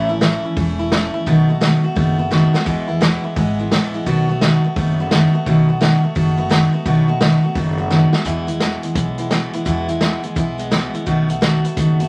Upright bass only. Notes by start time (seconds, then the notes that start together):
Already playing: A1
0.57 E1
1.27 B1
1.96 F#1
2.66 E2
3.37 G#1
3.72 A1
4.07 B1
4.76 F#1
5.47 B1
6.16 F#1
6.86 B1
7.55 F#1
8.25 E2
8.95 B1
9.66 E2
10.36 B1
11.07 B1
11.77 F#1